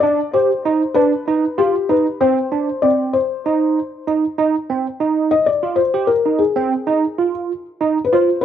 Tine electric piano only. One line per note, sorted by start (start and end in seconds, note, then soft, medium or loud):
0.03 0.19 D4 medium
0.34 0.50 G4 medium
0.65 0.81 D#4 medium
0.95 1.12 D4 medium
1.28 1.44 D#4 medium
1.58 1.74 F4 medium
1.89 2.06 D#4 medium
2.21 2.37 C4 medium
2.52 2.68 D4 medium
2.83 3.16 C4 medium
3.46 3.78 D#4 medium
4.07 4.24 D#4 medium
4.38 4.55 D#4 medium
4.70 4.86 C4 medium
5.00 5.33 D#4 medium
5.63 5.79 F4 medium
5.94 6.10 G4 medium
6.26 6.42 D#4 medium
6.56 6.72 C4 medium
6.87 7.03 D#4 medium
7.18 7.51 F4 medium
7.81 7.97 D#4 medium
8.12 8.29 F4 medium